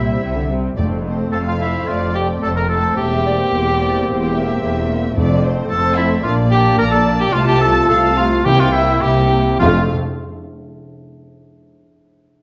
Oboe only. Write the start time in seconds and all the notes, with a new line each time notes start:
Already playing: E4
1.32 A4
1.48 F4
1.61 E4
1.88 F4
2.16 G4
2.42 A4
2.57 A#4
2.69 A4
2.97 G4
5.70 A4
5.97 E4
6.23 F4
6.51 G4
6.79 A#4
6.91 A4
7.21 G4
7.33 F4
7.47 G4
7.61 A4
7.89 A4
8.17 F4
8.45 G4
8.60 F4
8.73 E4
9.02 G4
9.60 F4